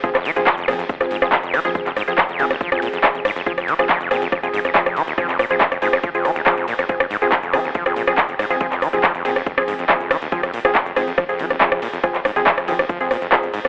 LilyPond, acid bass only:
\new Staff \with { instrumentName = "Acid bass" } { \clef bass \time 4/4 \key f \minor \tempo 4 = 140 f16 f,16 f16 ees,16 f16 f,16 bes,16 f,16 f,16 f,16 aes,16 f,16 f16 f,16 f16 ees,16 | f,16 f,16 aes,16 f,16 f16 f,16 f16 ees,16 f16 f,16 bes,16 f,16 f,16 f,16 aes,16 f,16 | f16 f,16 f16 ees,16 f16 f,16 bes,16 f,16 f,16 f,16 aes,16 f,16 f16 f,16 f16 ees,16 | f16 f,16 bes,16 f,16 f,16 f,16 aes,16 f,16 f16 f,16 f16 ees,16 f16 f,16 bes,16 f,16 |
f,16 f,16 aes,16 f,16 f16 f,16 f16 ees,16 f16 f,16 bes,16 f,16 f,16 f,16 aes,16 f,16 | f16 f,16 f16 ees,16 f16 f,16 bes,16 f,16 f,16 f,16 aes,16 f,16 f16 f,16 f16 ees,16 | f16 f,16 bes,16 f,16 f,16 f,16 aes,16 f,16 f16 f,16 f16 ees,16 f16 f,16 bes,16 f,16 | f,16 f,16 aes,16 f,16 f16 f,16 f16 ees,16 f16 f,16 bes,16 f,16 f,16 f,16 aes,16 f,16 | }